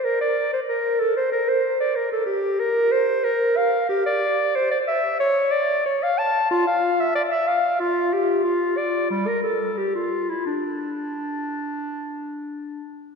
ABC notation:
X:1
M:4/4
L:1/16
Q:1/4=92
K:Bb
V:1 name="Clarinet"
B d2 c B2 A c B c2 d B A G2 | [K:Dm] B2 c2 B2 f2 G d3 c d e2 | ^c2 d2 c f a2 F f2 e d e f2 | F2 G2 F2 d2 G, B A2 G F2 E |
D12- D2 z2 |]